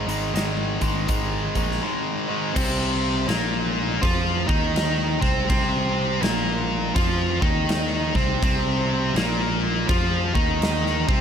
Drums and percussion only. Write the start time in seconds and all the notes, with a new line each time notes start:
0.09 closed hi-hat
0.36 snare, closed hi-hat
0.81 kick, closed hi-hat
1.09 kick, closed hi-hat
1.55 kick, closed hi-hat
1.72 snare
2.56 kick, crash
3.29 snare, crash
4.03 kick, crash
4.49 kick
4.76 snare, crash
5.22 kick, snare
5.50 kick, crash
6.23 snare, crash
6.96 kick, crash
7.42 kick
7.69 snare, crash
8.15 kick, snare
8.43 kick, crash
9.16 snare, crash
9.89 kick, crash
10.35 kick
10.62 snare, crash
10.86 snare
11.09 kick